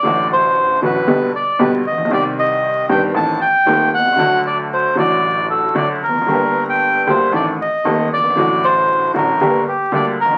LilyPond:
<<
  \new Staff \with { instrumentName = "Bandoneon" } { \time 4/4 \key g \minor \tempo 4 = 116 d''8 c''4 b'4 d''8 b'8 ees''8 | d''8 ees''4 g''8 a''8 g''4 fis''8~ | fis''8 d''8 c''8 d''4 a'8 d''8 bes'8~ | bes'8. g''8. c''8 d''8 ees''4 d''8~ |
d''8 c''4 bes'4 g'8 d''8 bes'8 | }
  \new Staff \with { instrumentName = "Upright piano" } { \clef bass \time 4/4 \key g \minor <a,, a, d fis a fis'>4. <a,, a, d fis a fis'>8 <b,, b, d g b g'>8 r8 <b,, b, d g b g'>8 r32 a,,32 bes,,32 b,,32 | <c, c ees g c' g'>4. <g,, g, ees g c' g'>8 <a,, a, ees a c' a'>8 r8 <ees,, ees, ees a c' a'>8 r32 b,,32 c,32 cis,32 | <d, d fis a fis'>4. <a,, a, d fis a fis'>4. <d, d fis a fis'>8 r32 e,32 f,32 fis,32 | <g,, g, d g bes g'>4. <d, d g bes g'>8 <a,, a, ees a c' a'>8 r8 <ees,, ees, ees a c' a'>8 r32 fis,,32 g,,32 aes,,32 |
<a,, a, d fis a fis'>4. <a,, a, d fis a fis'>8 <g,, g, d g bes g'>8 r8 <d, d g bes g'>8 r32 a,,32 bes,,32 r32 | }
  \new Staff \with { instrumentName = "Double bass" } { \clef bass \time 4/4 \key g \minor a,,4. a,,8 b,,8 r8 b,,8 bes,,8 | c,4. g,,8 a,,8 r8 ees,8 c,8 | d,4. a,,4. d,8 f,,8 | g,,4. d,8 a,,8 r8 ees,8 g,,8 |
a,,4. a,,8 g,,8 r8 d,8 bes,,8 | }
>>